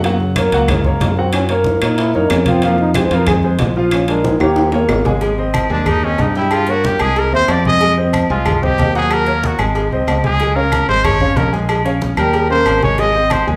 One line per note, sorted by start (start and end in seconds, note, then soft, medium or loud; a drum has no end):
0.00 0.47 F#2 medium
0.00 0.19 A#3 medium
0.00 high conga soft
0.00 high timbale medium
0.04 0.31 F#3 medium
0.04 0.31 F#4 medium
0.04 0.32 F#5 medium
0.04 high bongo medium
0.19 0.38 C#3 medium
0.19 high bongo soft
0.19 high conga soft
0.36 0.51 F#3 medium
0.36 0.50 A#3 medium
0.36 0.51 A#4 medium
0.36 0.51 C#5 medium
0.36 high bongo medium
0.36 high conga loud
0.36 high timbale loud
0.36 claves medium
0.52 0.98 C#2 medium
0.52 0.66 F#3 medium
0.52 0.70 A#3 loud
0.52 0.67 F#4 medium
0.52 0.67 F#5 medium
0.52 high bongo soft
0.52 high conga soft
0.52 high timbale medium
0.68 1.17 G#3 medium
0.68 0.83 A#3 medium
0.68 0.83 A#4 medium
0.68 0.83 C#5 medium
0.68 high bongo medium
0.68 high conga soft
0.68 low conga medium
0.68 high timbale medium
0.68 claves medium
0.84 1.12 A#3 medium
0.84 1.12 A#4 medium
0.84 1.12 C#5 medium
0.84 high bongo soft
0.84 high conga soft
0.84 low conga medium
1.00 1.76 F#2 medium
1.00 high bongo soft
1.00 low bongo medium
1.00 high conga medium
1.00 high timbale medium
1.00 low timbale medium
1.17 1.44 F#3 medium
1.17 1.32 C4 loud
1.17 1.45 F#4 medium
1.17 1.45 F#5 medium
1.17 high conga soft
1.33 1.43 C#4 medium
1.33 high bongo medium
1.33 high conga soft
1.33 high timbale loud
1.33 claves medium
1.49 1.76 A#3 medium
1.49 1.76 A#4 medium
1.49 1.76 C#5 medium
1.49 high bongo soft
1.49 high conga soft
1.49 high timbale medium
1.64 high bongo medium
1.64 high conga medium
1.82 2.12 A#2 loud
1.82 2.09 A#3 medium
1.82 1.99 D#4 medium
1.82 2.09 A#4 medium
1.82 2.09 C#5 medium
1.82 high bongo soft
1.82 high timbale loud
1.82 claves medium
1.97 2.16 E4 medium
1.97 high bongo medium
1.97 high conga soft
1.97 high timbale medium
2.14 2.30 F#2 medium
2.14 2.41 A#3 medium
2.14 2.32 D#4 loud
2.14 2.41 A#4 medium
2.14 2.41 C#5 medium
2.14 high bongo soft
2.14 high conga soft
2.30 3.06 F2 medium
2.30 2.47 C#4 medium
2.30 high bongo soft
2.30 low bongo medium
2.30 high conga soft
2.30 high timbale medium
2.30 low timbale medium
2.30 claves medium
2.46 2.60 F3 medium
2.46 2.66 C4 loud
2.46 2.60 F4 medium
2.46 2.61 F5 medium
2.46 high conga medium
2.46 high timbale medium
2.62 2.90 F3 medium
2.62 2.80 A#3 medium
2.62 2.90 F4 medium
2.62 2.90 F5 medium
2.62 high bongo medium
2.62 high conga soft
2.62 high timbale medium
2.78 2.98 D#4 loud
2.78 high bongo soft
2.78 high conga soft
2.94 3.09 G#3 medium
2.94 3.07 G4 medium
2.94 3.09 G#4 medium
2.94 3.09 C5 medium
2.94 high bongo medium
2.94 high conga medium
2.94 high timbale loud
2.94 claves medium
3.06 3.18 C5 loud
3.11 3.56 F2 loud
3.11 3.25 F3 medium
3.11 3.24 F4 medium
3.11 3.25 F5 medium
3.11 high bongo soft
3.11 high conga soft
3.11 high timbale medium
3.17 3.27 A#4 medium
3.27 3.41 G#3 medium
3.27 3.37 G#4 loud
3.27 3.41 G#4 medium
3.27 3.41 C5 medium
3.27 high bongo medium
3.27 high conga soft
3.27 low conga medium
3.27 high timbale medium
3.27 claves medium
3.43 3.70 G#3 medium
3.43 3.71 G#4 medium
3.43 3.71 C5 medium
3.43 high bongo soft
3.43 high conga soft
3.59 4.35 A#1 medium
3.59 high bongo soft
3.59 low bongo medium
3.59 high conga medium
3.59 high timbale medium
3.59 low timbale medium
3.76 4.03 F3 medium
3.76 4.03 F4 medium
3.76 4.03 F5 medium
3.76 high conga soft
3.91 4.07 C#4 medium
3.91 high bongo medium
3.91 high conga soft
3.91 high timbale loud
3.91 claves medium
4.08 4.35 G#3 medium
4.08 4.26 D4 medium
4.08 4.35 G#4 medium
4.08 4.35 A#4 medium
4.08 high bongo soft
4.08 high conga soft
4.08 high timbale medium
4.24 4.39 D#4 medium
4.24 high bongo medium
4.24 high conga medium
4.24 high timbale medium
4.40 4.85 D#2 loud
4.40 4.67 A#3 medium
4.40 4.70 G4 loud
4.40 4.67 A#4 medium
4.40 4.68 C#5 medium
4.40 high bongo soft
4.40 high timbale medium
4.40 claves medium
4.56 high bongo medium
4.56 high conga soft
4.56 high timbale medium
4.72 4.99 A#3 medium
4.72 5.00 A#4 medium
4.72 5.00 C#5 medium
4.72 high bongo soft
4.72 high conga soft
4.72 low timbale medium
4.89 5.64 G#1 medium
4.89 high bongo soft
4.89 low bongo medium
4.89 high conga soft
4.89 low timbale loud
4.89 claves medium
5.05 5.19 G#3 medium
5.05 5.19 G#4 medium
5.05 5.19 G#5 medium
5.05 high conga medium
5.05 low timbale medium
5.21 5.35 G#3 medium
5.21 5.35 G#4 medium
5.21 5.36 G#5 medium
5.21 cowbell loud
5.21 high conga soft
5.21 low agogo medium
5.38 5.65 C4 medium
5.38 5.65 C5 medium
5.38 5.65 D#5 medium
5.38 high conga soft
5.54 cowbell medium
5.54 high conga loud
5.54 low agogo loud
5.54 claves medium
5.70 6.15 D#2 medium
5.70 5.97 G#3 medium
5.70 5.90 D4 medium
5.70 5.97 G#4 medium
5.70 5.97 G#5 medium
5.70 high conga soft
5.86 6.06 D#4 medium
5.86 cowbell loud
5.86 high conga soft
5.86 low conga medium
5.86 low agogo loud
5.86 claves medium
6.03 6.30 C4 medium
6.03 6.23 C#4 medium
6.03 6.30 C5 medium
6.03 6.30 D#5 medium
6.03 high conga soft
6.18 6.94 G2 medium
6.18 6.36 D#4 medium
6.18 cowbell medium
6.18 high conga medium
6.18 low timbale medium
6.18 low agogo medium
6.35 6.62 G3 medium
6.35 6.55 E4 medium
6.35 6.63 G4 medium
6.35 6.63 G5 medium
6.35 cowbell medium
6.35 high conga soft
6.51 6.72 F4 medium
6.51 cowbell loud
6.51 high conga soft
6.51 low agogo loud
6.51 claves medium
6.67 6.94 A#3 medium
6.67 6.88 F#4 medium
6.67 6.95 A#4 medium
6.67 6.95 C#5 medium
6.67 high conga soft
6.67 low agogo medium
6.84 7.04 G4 medium
6.84 cowbell medium
6.84 high conga loud
6.99 7.30 C2 medium
6.99 7.27 G#3 medium
6.99 7.27 G#4 medium
6.99 7.20 G#4 medium
6.99 7.27 G#5 medium
6.99 low agogo loud
6.99 claves medium
7.16 7.34 A#4 medium
7.16 cowbell loud
7.16 high conga soft
7.16 low agogo medium
7.33 7.48 D#2 medium
7.33 7.59 C4 medium
7.33 7.59 C5 medium
7.33 7.52 C5 loud
7.33 7.60 E5 medium
7.33 high conga soft
7.48 8.24 F2 medium
7.48 7.66 D5 medium
7.48 cowbell medium
7.48 high conga soft
7.48 low timbale medium
7.48 low agogo loud
7.48 claves medium
7.65 7.79 G#3 medium
7.65 7.79 G#4 medium
7.65 7.96 D#5 loud
7.65 7.79 G#5 medium
7.65 high conga medium
7.81 7.94 G#3 medium
7.81 7.95 G#4 medium
7.81 7.95 G#5 medium
7.81 cowbell loud
7.81 low agogo medium
7.98 8.24 C4 medium
7.98 8.24 C5 medium
7.98 8.25 D#5 medium
7.98 high conga soft
8.13 cowbell medium
8.13 high conga medium
8.13 low agogo loud
8.13 claves medium
8.30 8.75 C2 loud
8.30 8.57 G#3 medium
8.30 8.65 F4 medium
8.30 8.57 G#4 medium
8.30 8.57 G#5 medium
8.30 high conga soft
8.46 cowbell loud
8.46 high conga soft
8.46 low conga medium
8.46 low agogo loud
8.46 claves medium
8.62 8.89 C4 medium
8.62 8.95 G4 loud
8.62 8.89 C5 medium
8.62 8.89 D#5 medium
8.62 high conga soft
8.62 low conga medium
8.78 9.54 D#2 medium
8.78 cowbell medium
8.78 high conga medium
8.78 low timbale medium
8.78 low agogo medium
8.95 9.21 F#3 medium
8.95 9.22 F#4 medium
8.95 9.15 G#4 loud
8.95 9.22 F#5 medium
8.95 cowbell medium
8.95 high conga soft
9.11 9.48 A#4 loud
9.11 cowbell loud
9.11 high conga soft
9.11 low agogo loud
9.11 claves medium
9.26 9.54 A#3 medium
9.26 9.54 A#4 medium
9.26 9.54 C#5 medium
9.26 high conga soft
9.26 low agogo medium
9.44 9.61 F#4 medium
9.44 cowbell medium
9.44 high conga medium
9.59 9.89 G#1 loud
9.59 9.86 G#3 medium
9.59 9.86 G#4 medium
9.59 9.86 G#5 medium
9.59 low agogo loud
9.59 claves medium
9.75 cowbell loud
9.75 high conga soft
9.75 low agogo medium
9.91 10.07 C2 medium
9.91 10.19 C4 medium
9.91 10.19 C5 medium
9.91 10.19 D#5 medium
9.91 high conga soft
10.07 10.83 C#2 medium
10.07 cowbell medium
10.07 high conga soft
10.07 low timbale medium
10.07 low agogo loud
10.07 claves medium
10.24 10.37 G#3 medium
10.24 10.37 G#4 medium
10.24 10.57 G#4 medium
10.24 10.38 G#5 medium
10.24 high conga medium
10.40 10.53 G#3 medium
10.40 10.54 G#4 medium
10.40 10.54 G#5 medium
10.40 cowbell medium
10.40 high conga soft
10.40 low agogo medium
10.56 10.83 C#4 medium
10.56 10.88 A#4 medium
10.56 10.83 C#5 medium
10.56 10.83 F5 medium
10.56 high conga soft
10.72 cowbell medium
10.72 high conga medium
10.72 low agogo loud
10.72 claves medium
10.88 11.34 G#1 medium
10.88 11.15 G#3 medium
10.88 11.15 G#4 medium
10.88 11.06 C5 loud
10.88 11.16 G#5 medium
10.88 high conga soft
11.04 11.39 C#5 loud
11.04 cowbell loud
11.04 high conga soft
11.04 low conga medium
11.04 low agogo loud
11.04 claves medium
11.20 11.47 C#4 medium
11.20 11.47 C#5 medium
11.20 11.48 F5 medium
11.20 high conga soft
11.20 low conga medium
11.36 12.12 A#1 medium
11.36 11.54 A#4 medium
11.36 cowbell medium
11.36 high conga medium
11.36 low timbale medium
11.36 low agogo medium
11.52 11.79 G#3 medium
11.52 11.80 G#4 medium
11.52 11.80 G#5 medium
11.52 cowbell medium
11.52 high conga soft
11.69 cowbell loud
11.69 high conga soft
11.69 low agogo loud
11.69 claves medium
11.85 12.12 C#4 medium
11.85 12.12 C#5 medium
11.85 12.12 F5 medium
11.85 high conga soft
11.85 low agogo medium
12.01 cowbell medium
12.01 high conga medium
12.17 12.63 D#2 loud
12.17 12.44 G3 loud
12.17 12.45 G4 medium
12.17 12.49 A#4 medium
12.17 12.45 G5 medium
12.17 low agogo loud
12.17 claves medium
12.33 cowbell loud
12.33 high conga soft
12.33 low agogo medium
12.50 12.77 A#3 medium
12.50 12.77 C#4 medium
12.50 12.77 A#4 medium
12.50 12.81 C5 loud
12.50 high conga soft
12.66 13.41 G#1 medium
12.66 cowbell medium
12.66 high conga soft
12.66 low timbale medium
12.66 low agogo loud
12.66 claves medium
12.82 12.96 G#3 medium
12.82 12.96 G#4 medium
12.82 13.01 C#5 medium
12.82 12.96 G#5 medium
12.82 high conga medium
12.98 13.12 G#3 medium
12.98 13.12 G#4 medium
12.98 13.34 D#5 loud
12.98 13.12 G#5 medium
12.98 cowbell loud
12.98 high conga soft
12.98 low agogo medium
13.15 13.42 C4 medium
13.15 13.42 C5 medium
13.15 13.42 D#5 medium
13.15 high conga soft
13.30 13.48 C5 medium
13.30 cowbell medium
13.30 high conga medium
13.30 low agogo loud
13.30 claves medium
13.47 13.56 D#2 loud
13.47 13.56 G#3 medium
13.47 13.56 G#4 medium
13.47 13.56 G#5 loud
13.47 high conga soft